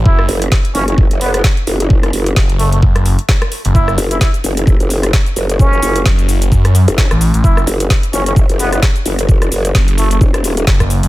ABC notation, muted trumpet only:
X:1
M:4/4
L:1/16
Q:"Swing 16ths" 1/4=130
K:F#m
V:1 name="Muted trumpet"
E2 z4 C C z2 B, B, z4 | z6 A, A, z8 | E2 z E E z8 z3 | C4 z12 |
E2 z4 C C z2 B, B, z4 | z6 A, A, z8 |]